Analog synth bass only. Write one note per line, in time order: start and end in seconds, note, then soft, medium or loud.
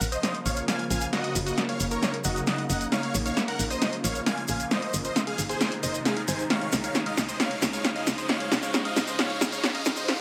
0.01 0.17 A#1 medium
0.46 0.62 A#1 medium
0.90 1.07 A#1 loud
1.35 1.51 F#1 loud
1.80 1.96 F#1 medium
2.25 2.41 F#1 medium
2.69 2.86 F#1 loud
3.14 3.30 A#1 loud
3.59 3.75 A#1 medium
4.04 4.20 A#1 medium
4.49 4.65 A#1 loud
4.94 5.10 G#1 medium
5.38 5.54 G#1 medium
5.83 5.99 F#1 medium
6.28 6.44 G#1 loud
6.73 6.89 C#2 medium
7.17 7.33 C#2 medium
7.62 7.78 C#2 medium
8.07 8.23 C#2 loud
8.52 8.68 C#2 loud
8.96 9.13 C#2 medium
9.41 9.57 C#2 medium
9.86 10.02 C#2 loud